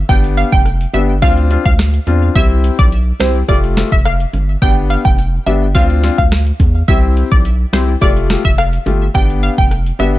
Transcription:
0.09 sub bass G1, grand piano B3 D4 G4, synth pluck G5, kick, closed hi-hat, high bongo
0.24 closed hi-hat
0.37 synth pluck F5, closed hi-hat
0.52 sub bass F1, synth pluck G5, kick
0.65 cross-stick, closed hi-hat
0.81 closed hi-hat
0.94 sub bass G1, grand piano B3 D4 G4, synth pluck E5, closed hi-hat, high bongo, low bongo
1.22 sub bass D2, grand piano C4 D4 F4, synth pluck F5, kick, closed hi-hat, high bongo
1.37 closed hi-hat
1.50 grand piano C4 D4 F4, closed hi-hat, high bongo
1.66 sub bass D2, synth pluck F5, kick
1.79 cross-stick, snare, closed hi-hat
1.94 closed hi-hat
2.07 sub bass E2, grand piano C4 D4 F4, closed hi-hat, low bongo
2.35 sub bass C2, grand piano C4 E4 G4, synth pluck E5, kick, closed hi-hat, high bongo
2.64 closed hi-hat
2.79 sub bass B1, synth pluck D5, kick
2.92 closed hi-hat
3.20 sub bass C2, grand piano C4 E4 G4, synth pluck C5, cross-stick, snare, closed hi-hat, high bongo, low bongo
3.48 sub bass F1, grand piano A3 F4 G4, synth pluck D5, kick, closed hi-hat, high bongo
3.64 closed hi-hat
3.77 grand piano A3 F4 G4, cross-stick, snare, closed hi-hat, high bongo
3.92 sub bass F1, synth pluck E5, kick
4.05 synth pluck F5, cross-stick, closed hi-hat
4.20 closed hi-hat
4.33 sub bass G1, closed hi-hat, low bongo
4.62 sub bass G1, grand piano B3 D4 G4, synth pluck G5, kick, closed hi-hat, high bongo
4.90 synth pluck F5, closed hi-hat
5.05 sub bass F1, synth pluck G5, kick
5.19 closed hi-hat
5.46 sub bass G1, grand piano B3 D4 G4, synth pluck E5, closed hi-hat, high bongo, low bongo
5.75 sub bass D2, grand piano C4 D4 F4, synth pluck F5, kick, closed hi-hat, high bongo
5.90 closed hi-hat
6.03 grand piano C4 D4 F4, snare, closed hi-hat, high bongo
6.18 sub bass D2, synth pluck F5, kick
6.32 cross-stick, snare, closed hi-hat
6.47 closed hi-hat
6.60 sub bass E2, kick, closed hi-hat, low bongo
6.88 sub bass C2, grand piano C4 E4 G4, synth pluck E5, kick, closed hi-hat, high bongo
7.17 closed hi-hat
7.32 sub bass B1, synth pluck D5, kick
7.45 closed hi-hat
7.73 sub bass C2, grand piano C4 E4 G4, synth pluck C5, cross-stick, snare, closed hi-hat, high bongo, low bongo
8.01 sub bass F1, grand piano A3 F4 G4, synth pluck D5, kick, closed hi-hat, high bongo
8.17 closed hi-hat
8.30 grand piano A3 F4 G4, cross-stick, snare, closed hi-hat, high bongo
8.45 sub bass F1, synth pluck E5, kick
8.58 synth pluck F5, cross-stick, closed hi-hat
8.73 closed hi-hat
8.86 sub bass G1, grand piano A3 F4 G4, closed hi-hat, low bongo
9.14 sub bass G1, grand piano B3 D4 G4, synth pluck G5, kick, closed hi-hat, high bongo
9.30 closed hi-hat
9.43 synth pluck F5, closed hi-hat
9.58 sub bass F1, synth pluck G5, kick
9.71 cross-stick, closed hi-hat
9.86 closed hi-hat
9.99 sub bass G1, grand piano B3 D4 G4, synth pluck E5, closed hi-hat, high bongo, low bongo

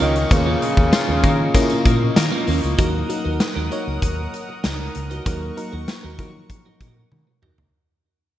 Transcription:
Already playing: fm electric piano A#3 C#4 F4, analog synth pad A#4 C#6
0.00 fingered electric bass C#2, tenor saxophone D#3, overdriven electric guitar F3 A#3, clean electric guitar C#4 F4 A#4, analog synth pad D#5, closed hi-hat
0.15 muted clean electric guitar stroke, closed hi-hat
0.30 fingered electric bass D#2, overdriven electric guitar A#2 F3, tenor saxophone C#3, fm electric piano A#3 B3 F4, muted clean electric guitar stroke, kick, closed hi-hat
0.34 overdriven electric guitar A#3, fm electric piano C#4
0.46 clean electric guitar C#4 F4 A#4
0.62 clean electric guitar C#4 F4 A#4, closed hi-hat
0.77 fingered electric bass D#2, muted clean electric guitar stroke, kick
0.92 clean electric guitar F4, muted clean electric guitar stroke, snare, closed hi-hat, tambourine
1.08 fingered electric bass D#2, clean electric guitar C#4 F4 A#4
1.23 fingered electric bass D#3, clean electric guitar A#3 C#4 F4 A#4, kick, closed hi-hat
1.39 muted clean electric guitar stroke
1.54 overdriven electric guitar A#2 F3 A#3, fm electric piano A#3 C#4 E4, clean electric guitar A#3, muted clean electric guitar stroke, kick, closed hi-hat
1.62 fm electric piano F4
1.70 clean electric guitar C#4 F4 A#4, closed hi-hat
1.85 fingered electric bass A#2, clean electric guitar A#3 C#4 F4 A#4, kick, closed hi-hat
2.01 muted clean electric guitar stroke
2.16 fingered electric bass D#3, clean electric guitar A#3, muted clean electric guitar stroke, snare, closed hi-hat, tambourine
2.31 clean electric guitar C#4 F4 A#4
2.47 fingered electric bass D#2, overdriven electric guitar F3 A#3, clean electric guitar C#4 F4 A#4, open hi-hat
2.63 fingered electric bass C#2, muted clean electric guitar stroke, closed hi-hat
2.78 fingered electric bass D#2, fm electric piano F#3 A#3 D#4 A#4, clean electric guitar D#4 F#4 A#4, analog synth pad A#4 F#5 D#6, kick, closed hi-hat
2.94 muted clean electric guitar stroke
3.09 fm electric piano F#3 A#3 D#4 A#4, muted clean electric guitar stroke, closed hi-hat
3.24 fingered electric bass D#2, clean electric guitar D#4 F#4 A#4
3.40 muted clean electric guitar stroke, snare, closed hi-hat
3.56 fingered electric bass D#2, clean electric guitar D#4 F#4 A#4
3.71 fm electric piano F#3 A#3 D#4 C#5, clean electric guitar D#4 F#4 A#4, closed hi-hat
3.87 fingered electric bass C#2, muted clean electric guitar stroke
4.02 fingered electric bass D#2, muted clean electric guitar stroke, kick, closed hi-hat
4.18 muted clean electric guitar stroke
4.34 closed hi-hat
4.49 muted clean electric guitar stroke
4.64 fingered electric bass C#2, clean electric guitar D#4 F#4 A#4, snare, closed hi-hat
4.79 muted clean electric guitar stroke
4.95 fingered electric bass C#2, muted clean electric guitar stroke, closed hi-hat
5.10 clean electric guitar D#4 F#4 A#4, closed hi-hat
5.25 fingered electric bass D#2, fm electric piano F#3 A#3 D#4 A#4, clean electric guitar D#4 F#4 A#4, analog synth pad C#6, kick, closed hi-hat
5.41 muted clean electric guitar stroke
5.56 fm electric piano F#3 A#3 D#4 A#4, muted clean electric guitar stroke, closed hi-hat
5.72 fingered electric bass D#2, clean electric guitar D#4 F#4 A#4
5.88 muted clean electric guitar stroke, snare, closed hi-hat
6.03 fingered electric bass D#2, clean electric guitar D#4 F#4 A#4
6.19 fingered electric bass D#3, fm electric piano F3 A#3 D#4 A#4, clean electric guitar D#4 F#4 A#4, kick, closed hi-hat
6.25 fm electric piano F#3
6.34 muted clean electric guitar stroke
6.50 muted clean electric guitar stroke, kick, closed hi-hat
6.65 clean electric guitar D#4 F#4 A#4
6.81 fingered electric bass A#2, clean electric guitar D#4 F#4 A#4, kick, closed hi-hat
6.96 muted clean electric guitar stroke
7.12 fingered electric bass D#3, high tom
7.27 muted clean electric guitar stroke
7.42 fingered electric bass D#2, clean electric guitar D#4 F#4 A#4, mid tom
7.58 fingered electric bass C#2, muted clean electric guitar stroke, floor tom

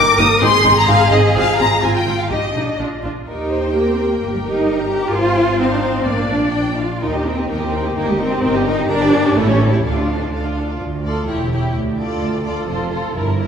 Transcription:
Already playing: cello section A#4, violin section D6
0.18 double bass section G1, viola section A#3 D#4, violin section D#6
0.41 double bass section G#1, viola section C4 D#4, cello section G#4, violin section C6
0.64 double bass section G#1, viola section C4 D#4
0.76 violin section A#5
0.87 double bass section G#1, viola section C4 D#4, violin section F5
1.10 double bass section G#1, viola section C4 D#4, violin section D#5
1.34 double bass section G#1, viola section C4 F4, violin section F5
1.58 double bass section G#1, viola section C4 F4, violin section A#5
1.82 double bass section G#1, viola section C4 F4, cello section F4, violin section G#5
1.94 violin section G5
2.06 double bass section G#1, viola section C4 F4
2.18 violin section F5
2.30 double bass section A#1, viola section D#4 G4, cello section G4, violin section D#5
2.54 double bass section A#1, cello section D4, viola section D#4 G4
2.79 double bass section A#1, viola section D4 F4
3.03 double bass section A#1, viola section D4 F4, cello section F4
3.26 double bass section D#2, cello section D#4, viola section G4, violin section A#4 G5
3.50 violin section C5
3.74 cello section A#3, violin section A#4
3.87 cello section C4
4.10 cello section A#3
4.20 double bass section G1, cello section A#3, viola section G4, violin section A#4
4.33 cello section G3
4.44 cello section D#4
4.68 violin section A#5
4.90 cello section G4
5.12 double bass section G#1, cello section F4, viola section F4, violin section C5 G#5
5.59 cello section C4, viola section D#4, violin section C5 F5
5.72 cello section D4
5.82 cello section C4
6.05 double bass section A#1, cello section A#3, viola section D4, violin section D5 F5
6.29 cello section D4
6.53 violin section G5
6.77 cello section F4, violin section F5
7.02 double bass section D#2, cello section D#4, viola section D#4, violin section A#4 G5
7.13 violin section G4 D#5, viola section G4
7.25 cello section C4, viola section D#4, violin section A#4 G5
7.37 viola section G4, violin section G4 D#5
7.49 double bass section D#2, cello section A#3, viola section D#4, violin section A#4 G5
7.61 cello section C4, viola section G4, violin section G4 D#5
7.72 viola section D#4, violin section A#4 G5
7.84 cello section A#3, viola section G4, violin section G4 D#5
7.95 double bass section G1, cello section A#3, viola section D#4, violin section A#4 G5
8.08 cello section G3, viola section G4, violin section G4 D#5
8.19 cello section C4, viola section D#4, violin section A#4 G5
8.31 viola section G4, violin section G4 D#5
8.43 double bass section G1, viola section D#4, violin section A#4 G5
8.54 violin section G4 D#5, viola section G4
8.65 viola section D#4, cello section D#4, violin section A#4 G5
8.76 violin section G4 D#5, viola section G4
8.88 double bass section G1, cello section D4, viola section D4, violin section A#4 A#5
9.00 viola section G4, violin section D5 G5
9.12 viola section D4, violin section A#4 A#5
9.24 viola section G4, violin section D5 G5
9.36 double bass section A1, cello section A3, viola section E4, violin section A4 C#5
9.48 cello section C#4, viola section G4, violin section C#5 E5
9.59 viola section E4, violin section A4 C#5
9.72 cello section E4, viola section G4, violin section C#5 E5
9.83 double bass section D2, cello section D4, viola section D4, violin section A4 F5
9.95 violin section F4 D5, viola section F4
10.08 viola section D4, violin section A4 F5
10.20 viola section F4, violin section F4 D5
10.32 double bass section D2, viola section D4, violin section A4 F5
10.44 viola section F4, violin section F4 D5
10.57 viola section D4, violin section A4 F5
10.68 viola section F4, violin section F4 D5
10.80 cello section D2, double bass section D2
11.04 viola section F4, violin section A4 D5
11.27 double bass section E1, cello section E2, viola section E4, violin section G4 C#5
11.51 viola section E4, violin section G4 C#5
11.74 cello section D2, double bass section D2
11.98 viola section F4, violin section A4 D5
12.21 cello section D2, double bass section D2
12.45 viola section F4, violin section A4 D5
12.68 double bass section F1, cello section F2, viola section F4, violin section A4 C5
12.91 viola section F4, violin section A4 C5
13.14 double bass section G1, cello section G2, viola section E4, violin section A#4
13.38 viola section E4, violin section A#4

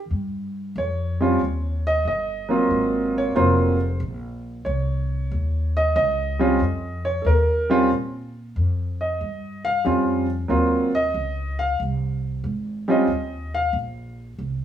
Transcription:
0.11 upright bass G2
0.76 upright bass F2, grand piano C#5
1.20 grand piano G3 C4 C#4 F4
1.41 upright bass D#2
1.87 grand piano D#5
2.05 upright bass G1, grand piano D#5
2.49 grand piano F#3 A#3 C4 F4
2.71 upright bass G#1
3.18 grand piano C#5
3.35 upright bass F1, grand piano F#3 A#3 C4 F4 C5
4.00 upright bass A#1
4.65 upright bass C2, grand piano C#5
5.31 upright bass D#2
5.77 grand piano D#5
5.96 upright bass C#2, grand piano D#5
6.39 grand piano G3 C4 C#4 F4
6.60 upright bass F2
7.05 grand piano C#5
7.22 upright bass D#2, grand piano A4
7.26 grand piano A#4
7.70 grand piano G3 C4 C#4 F4
7.90 upright bass A#2
8.56 upright bass F2
9.01 grand piano D#5
9.21 upright bass G2
9.65 grand piano F5
9.85 upright bass F2, grand piano G3 C4 C#4 F4
10.48 upright bass D#2, grand piano F#3 A#3 C4 F4
10.95 grand piano D#5
11.14 upright bass C#2
11.59 grand piano F5
11.80 upright bass C2
12.44 upright bass G#1
12.88 grand piano G3 C4 C#4 F4 D#5
13.07 upright bass D#2
13.54 grand piano F5
13.73 upright bass A#1
14.38 upright bass C2

